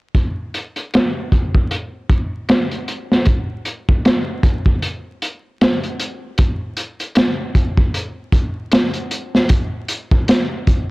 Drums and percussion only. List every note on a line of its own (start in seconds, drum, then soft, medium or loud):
0.15 kick medium
0.15 closed hi-hat medium
0.54 closed hi-hat medium
0.76 closed hi-hat soft
0.94 snare loud
0.94 closed hi-hat medium
1.32 kick medium
1.32 closed hi-hat medium
1.55 kick medium
1.71 closed hi-hat medium
2.09 kick medium
2.09 closed hi-hat medium
2.49 snare loud
2.49 closed hi-hat medium
2.71 closed hi-hat soft
2.88 closed hi-hat medium
3.12 snare soft
3.26 kick medium
3.26 closed hi-hat medium
3.65 closed hi-hat medium
3.89 kick medium
4.05 snare loud
4.05 closed hi-hat medium
4.43 kick medium
4.43 closed hi-hat medium
4.66 kick medium
4.82 closed hi-hat medium
5.22 closed hi-hat medium
5.61 snare loud
5.61 closed hi-hat medium
5.83 closed hi-hat soft
5.99 closed hi-hat medium
6.38 kick medium
6.38 closed hi-hat medium
6.77 closed hi-hat medium
7.00 closed hi-hat soft
7.15 snare loud
7.15 closed hi-hat medium
7.55 kick medium
7.55 closed hi-hat medium
7.77 kick medium
7.94 closed hi-hat medium
8.32 kick medium
8.32 closed hi-hat medium
8.72 snare loud
8.72 closed hi-hat medium
8.94 closed hi-hat soft
9.11 closed hi-hat medium
9.35 snare soft
9.49 kick medium
9.49 closed hi-hat medium
9.88 closed hi-hat medium
10.11 kick medium
10.28 snare loud
10.28 closed hi-hat medium
10.67 kick medium
10.67 closed hi-hat soft